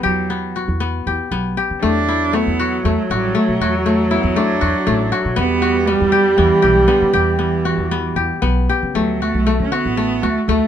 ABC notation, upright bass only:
X:1
M:7/8
L:1/16
Q:1/4=118
K:Dmix
V:1 name="Upright bass" clef=bass
E,,4- E,, E,,3 E,, z B,,,2 z ^C, | E,,4- E,, E,,3 E,, z A,,,2 z B,, | E,,4- E,, E,,3 E,, z A,,,2 z B,, | E,,4- E,, E,,3 E,, z B,,,2 z ^C, |
E,,4- E,, E,,3 E,, z B,,,2 z ^C, | D,,3 B,,,2 D,2 A,,,3 D,, z D,, z |]